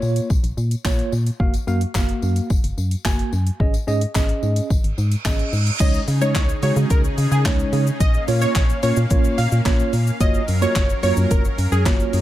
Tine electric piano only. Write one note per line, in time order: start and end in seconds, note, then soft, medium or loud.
0.00 0.28 A#3 medium
0.00 0.28 F4 medium
0.00 0.28 C#5 loud
0.85 1.11 A#3 medium
0.85 1.11 F4 medium
0.85 1.12 C#5 loud
1.40 1.53 A#3 medium
1.40 1.53 F#4 medium
1.40 1.53 F5 loud
1.67 1.81 A#3 medium
1.67 1.81 F#4 medium
1.67 1.81 F5 loud
1.95 2.48 A#3 medium
1.95 2.48 F#4 medium
1.95 2.48 F5 loud
3.05 3.31 A#3 medium
3.05 3.32 F#4 medium
3.05 3.32 G#5 medium
3.60 3.73 C#4 medium
3.60 3.73 G#4 medium
3.60 3.73 D#5 loud
3.87 4.01 C#4 medium
3.87 4.01 G#4 medium
3.87 4.01 D#5 loud
4.15 4.68 C#4 medium
4.15 4.68 G#4 medium
4.15 4.68 D#5 loud
5.25 5.52 C#4 medium
5.25 5.52 G#4 medium
5.25 5.52 D#5 medium
5.80 6.00 G#3 medium
5.80 6.00 C#4 medium
5.80 6.00 D#4 medium
5.80 6.00 C#5 medium
6.21 6.41 G#3 medium
6.21 6.41 C#4 medium
6.21 6.41 D#4 medium
6.21 6.42 C#5 medium
6.63 7.03 G#3 medium
6.63 7.03 C#4 medium
6.63 7.03 D#4 medium
6.63 7.03 F#4 medium
7.45 7.85 G#3 medium
7.45 7.85 C#4 medium
7.45 7.85 D#4 medium
7.45 7.85 C#5 medium
8.28 8.54 A#3 medium
8.28 8.55 C#4 medium
8.28 8.55 F4 medium
8.28 8.55 C#5 medium
8.83 8.96 A#3 medium
8.83 8.96 C#4 medium
8.83 8.96 F4 medium
8.83 8.96 C#5 medium
9.10 9.37 A#3 medium
9.10 9.37 C#4 medium
9.10 9.37 F4 medium
9.10 9.37 C#5 loud
9.65 9.92 A#3 medium
9.65 9.92 C#4 medium
9.65 9.92 F4 medium
9.65 9.92 C#5 loud
10.20 10.40 A#3 medium
10.20 10.41 F4 medium
10.20 10.41 F#4 medium
10.20 10.41 C#5 medium
10.62 10.82 A#3 medium
10.62 10.82 F4 medium
10.62 10.82 F#4 medium
10.62 10.82 C#5 medium
11.03 11.43 A#3 medium
11.03 11.43 F4 medium
11.03 11.43 F#4 medium
11.03 11.43 C#5 medium
11.86 12.21 A#3 medium
11.86 12.21 F4 medium
11.86 12.21 F#4 medium
11.86 12.21 C#5 medium